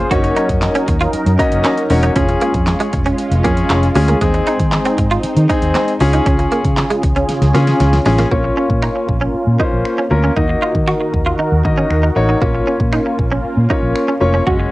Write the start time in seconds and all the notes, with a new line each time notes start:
Already playing: C#4
0.11 F#1 F#3 A#3 C#4 D#4 F#4 A#4 C#5, kick, closed hi-hat
0.24 muted clean electric guitar stroke, closed hi-hat
0.36 D#4, closed hi-hat
0.49 F#2, kick, closed hi-hat
0.62 snare, clap, closed hi-hat
0.75 C#4, closed hi-hat
0.88 D#2, muted clean electric guitar stroke, kick, closed hi-hat
1.01 F4, closed hi-hat
1.13 muted fingered electric bass stroke, closed hi-hat
1.26 F#2, closed hi-hat
1.39 A#3 C#4 D#4 F#4 D#5, kick, closed hi-hat
1.52 F#1, closed hi-hat
1.65 C#4, snare, clap, closed hi-hat
1.78 closed hi-hat
1.90 E1 A#3 C#4 D#4 F#4 C#5, muted clean electric guitar stroke, open hi-hat
2.03 D#4, closed hi-hat
2.16 F1 G#3 C#4 F4 G#4, kick, closed hi-hat
2.29 muted clean electric guitar stroke, closed hi-hat
2.41 A#3, closed hi-hat
2.54 F2, kick, closed hi-hat
2.67 snare, clap, closed hi-hat
2.80 G#3, closed hi-hat
2.93 F1, muted clean electric guitar stroke, kick, closed hi-hat
3.06 C#4, closed hi-hat
3.18 closed hi-hat
3.31 F1, closed hi-hat
3.44 F2 A#3 C#4 F4 G#4, kick, closed hi-hat
3.57 closed hi-hat
3.70 F1, muted clean electric guitar stroke, snare, clap, closed hi-hat
3.83 closed hi-hat
3.95 D2 G#3 C#4 F4 G#4, open hi-hat
4.08 A#3, closed hi-hat
4.21 D#2 G#3 C4 D#4 G#4, kick, closed hi-hat
4.34 muted clean electric guitar stroke, closed hi-hat
4.47 D#4, closed hi-hat
4.59 D#3, kick, closed hi-hat
4.72 snare, clap, closed hi-hat
4.85 C4, closed hi-hat
4.98 G#2, muted clean electric guitar stroke, kick, closed hi-hat
5.11 F4, closed hi-hat
5.23 muted fingered electric bass stroke, closed hi-hat
5.37 D#3, closed hi-hat
5.49 C4 D#4 G#4, kick, closed hi-hat
5.62 D#2, closed hi-hat
5.75 C4, snare, clap, closed hi-hat
5.88 closed hi-hat
6.00 C#2 C#3 C#4 F4 G#4, muted clean electric guitar stroke, open hi-hat
6.13 D#4, closed hi-hat
6.26 C#2 C#4, kick, closed hi-hat
6.39 muted clean electric guitar stroke, closed hi-hat
6.52 A#3, closed hi-hat
6.65 C#3, kick, closed hi-hat
6.77 snare, clap, closed hi-hat
6.90 G#3, closed hi-hat
7.03 C#2, muted clean electric guitar stroke, kick, closed hi-hat
7.16 C#4, closed hi-hat
7.29 snare, closed hi-hat
7.42 C#2, snare, closed hi-hat
7.54 C#3 A#3 C#4 F4 G#4, snare, closed hi-hat
7.67 snare, closed hi-hat
7.80 C#2, muted clean electric guitar stroke, snare, closed hi-hat
7.93 snare, closed hi-hat
8.05 A1 G#3 C#4 F4 G#4, snare, open hi-hat
8.18 A#3, snare, closed hi-hat
8.31 A#1 A#3 C#4 F4 C#5, kick
8.44 muted clean electric guitar stroke
8.57 C#4
8.70 A#2, kick
8.82 D#4, finger snap
8.96 muted clean electric guitar stroke
9.09 A#1, kick
9.21 C#4
9.34 muted fingered electric bass stroke
9.47 A#2
9.59 A#3 C#4 D#4 F4 C5, kick
9.73 A#1
9.85 finger snap
9.98 C#4
10.11 D2 A#3 C#4 F4 A#4, muted clean electric guitar stroke
10.24 C#4
10.36 D#2 D#3 A#3 D#4 F#4 A#4 D#5, kick
10.49 muted clean electric guitar stroke
10.62 F4
10.75 D#3, kick
10.88 F#4, finger snap
11.01 muted clean electric guitar stroke
11.14 D#2, kick
11.26 F4
11.39 D#4
11.52 D#2
11.65 D#3 A#3 D#4 F#4 D#5, muted clean electric guitar stroke, kick
11.78 C#4
11.91 D#2, finger snap
12.03 D#4
12.16 A1 A#3 D#4 F#4 C#5, muted clean electric guitar stroke
12.29 D#4
12.41 A#1 A#3 C#4 F4 C#5, kick
12.55 muted clean electric guitar stroke
12.67 C#4
12.80 A#2, kick
12.93 D#4, finger snap
13.06 muted clean electric guitar stroke
13.19 A#1, kick
13.32 C#4
13.44 muted fingered electric bass stroke
13.57 A#2
13.70 A#3 C#4 D#4 F4 C#5, kick
13.83 A#1
13.96 finger snap
14.08 C#4
14.21 F1 A#3 C#4 F4 C#5, muted clean electric guitar stroke
14.34 C#4
14.47 F#1 G#3 C#4 F#4 C#5, kick
14.60 muted clean electric guitar stroke